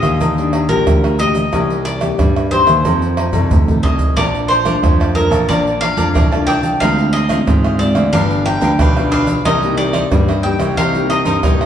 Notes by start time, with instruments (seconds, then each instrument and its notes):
Already playing: nylon-string guitar A#2 A#3 G4, mandolin D#5
0.03 grand piano D#2, pandeiro, tamborim, shaker, surdo
0.21 grand piano D#2, nylon-string guitar D#3, pandeiro, low agogo, shaker, surdo
0.38 nylon-string guitar A#3 D4 G4, pandeiro, shaker
0.53 pandeiro, tamborim, low agogo
0.69 grand piano A#1, nylon-string guitar A#3 D4 G4, mandolin A#4, pandeiro, low agogo, shaker, surdo
0.87 grand piano D2, nylon-string guitar A#2, pandeiro, tamborim, shaker, surdo
1.04 pandeiro, tamborim, shaker
1.19 nylon-string guitar A#3 D4 G4, mandolin D#5, pandeiro, high agogo, shaker
1.35 pandeiro, shaker
1.53 grand piano C2, nylon-string guitar C3 A#3 D#4 G4, pandeiro, tamborim, low agogo, shaker, surdo
1.70 pandeiro, shaker
1.85 mandolin D5, pandeiro
2.01 nylon-string guitar A#3 D#4 G4, pandeiro, tamborim, shaker, surdo
2.19 grand piano G2, nylon-string guitar G2, pandeiro, tamborim, shaker, surdo
2.36 pandeiro, tamborim, shaker, surdo
2.51 nylon-string guitar A#3 D#4 G4, mandolin C5, pandeiro, high agogo
2.67 grand piano D#2, pandeiro, tamborim, shaker, surdo
2.85 grand piano F2, nylon-string guitar F3 C4 D#4 A4, pandeiro, low agogo, shaker, surdo
3.02 pandeiro, shaker
3.17 pandeiro, tamborim, low agogo
3.32 grand piano C2, nylon-string guitar C4 D#4 A4, surdo, pandeiro, low agogo, shaker
3.51 grand piano D2, nylon-string guitar C3, surdo, pandeiro, shaker
3.68 nylon-string guitar C4 D#4 A4, pandeiro, shaker, surdo
3.83 grand piano C2, mandolin D#5, pandeiro, high agogo, surdo
3.99 pandeiro, shaker, surdo
4.16 grand piano A#1, nylon-string guitar A#2 D4 F4, cavaquinho A#4 D5 F5 A5, mandolin D5, pandeiro, tamborim, low agogo, shaker, surdo
4.35 pandeiro, shaker
4.48 cavaquinho A#4 D5 F5 A5, mandolin C5, pandeiro, shaker
4.65 nylon-string guitar A3 D4 F4, cavaquinho A#4 D5 F5 A5, pandeiro, tamborim, shaker, surdo
4.83 grand piano F2, nylon-string guitar F3, pandeiro, tamborim, shaker, surdo
5.00 cavaquinho D5 F5 A5, pandeiro, tamborim, shaker, surdo
5.15 nylon-string guitar A3 D4 F4, mandolin A#4, pandeiro, high agogo
5.31 grand piano A#1, cavaquinho D5 F5 A5, pandeiro, tamborim, shaker, surdo
5.49 grand piano A#1, nylon-string guitar A#2 D4 F4, cavaquinho A#4 D5 F5 A5, mandolin D5, pandeiro, low agogo, shaker, surdo
5.67 pandeiro, shaker
5.81 cavaquinho A#4 D5 F5 A5, mandolin F5, pandeiro, tamborim, low agogo
5.97 grand piano F2, nylon-string guitar A3 D4 F4, cavaquinho A#4 D5 F5 A5, pandeiro, low agogo, shaker, surdo
6.14 grand piano C2, nylon-string guitar F3, cavaquinho A#4 D5 F5 A5, pandeiro, tamborim, shaker, surdo
6.31 nylon-string guitar A3 D4 F4, cavaquinho D5 F5 A5, pandeiro, tamborim, shaker
6.47 cavaquinho A#4 D5 F5 A5, mandolin G5, pandeiro, high agogo, surdo
6.63 cavaquinho D5 F5 A5, pandeiro, shaker
6.80 grand piano D2, nylon-string guitar D3 G#3 C4 F4, cavaquinho D4 G#4 C5 F5, mandolin F5, pandeiro, tamborim, low agogo, shaker, surdo
6.98 pandeiro, shaker
7.13 cavaquinho D4 G#4 C5 F5, mandolin D#5, pandeiro
7.29 nylon-string guitar G#3 C4 F4, cavaquinho D4 G#4 C5 F5, pandeiro, tamborim, shaker, surdo
7.47 grand piano G#2, nylon-string guitar D3, pandeiro, tamborim, shaker, surdo
7.64 cavaquinho G#4 C5 F5, pandeiro, tamborim, shaker, surdo
7.79 nylon-string guitar G#3 C4 F4, mandolin D5, pandeiro, high agogo, shaker
7.95 grand piano D2, cavaquinho G#4 C5 F5, pandeiro, tamborim, shaker, surdo
8.13 grand piano G1, nylon-string guitar G2 F3 B3 D4, cavaquinho D4 G4 B4 F5, mandolin F5, pandeiro, low agogo, shaker, surdo
8.30 pandeiro, shaker
8.45 cavaquinho D4 G4 B4 F5, mandolin G5, pandeiro, tamborim, low agogo
8.61 grand piano D2, nylon-string guitar F3 B3 D4, cavaquinho D4 G4 B4 F5, pandeiro, low agogo, shaker, surdo
8.79 grand piano B1, nylon-string guitar D3, cavaquinho D4 G4 B4 F5, pandeiro, tamborim, shaker, surdo
8.96 nylon-string guitar F3 B3 D4, cavaquinho G4 B4 F5, pandeiro, tamborim, shaker
9.11 cavaquinho D4 G4 B4 F5, mandolin F5, pandeiro, high agogo
9.27 cavaquinho G4 B4 F5, pandeiro, shaker
9.45 grand piano C2, nylon-string guitar C3 A#3 D#4 G4, cavaquinho D#4 A#4 C5 D#5, mandolin D#5, pandeiro, tamborim, low agogo, shaker, surdo
9.62 nylon-string guitar A#3 D#4 G4, pandeiro, shaker
9.77 cavaquinho D#4 A#4 C5 D#5, mandolin D5, pandeiro
9.93 cavaquinho D#4 A#4 C5 D#5, pandeiro, tamborim, shaker, surdo
10.11 nylon-string guitar G2 A#3 D#4 G4, grand piano G2, pandeiro, tamborim, shaker, surdo
10.28 cavaquinho A#4 C5 D#5, pandeiro, tamborim, shaker, surdo
10.43 nylon-string guitar A#3 D#4 G4, mandolin G5, pandeiro, high agogo
10.59 grand piano C2, cavaquinho A#4 C5 D#5, pandeiro, tamborim, shaker, surdo
10.77 grand piano C2, nylon-string guitar C3, cavaquinho D#4 A#4 C5 D#5, mandolin F5, pandeiro, low agogo, shaker, surdo
10.95 nylon-string guitar A#3 D#4 G4, pandeiro, shaker
11.10 cavaquinho D#4 A#4 C5 D#5, mandolin D#5, pandeiro, tamborim, low agogo
11.25 grand piano G2, cavaquinho D#4 A#4 C5 D#5, pandeiro, low agogo, shaker, surdo
11.43 grand piano C2, nylon-string guitar G2 A#3 D#4 G4, cavaquinho D#4 A#4 C5 D#5, pandeiro, tamborim, shaker, surdo
11.61 cavaquinho A#4 C5 D#5, pandeiro, tamborim, shaker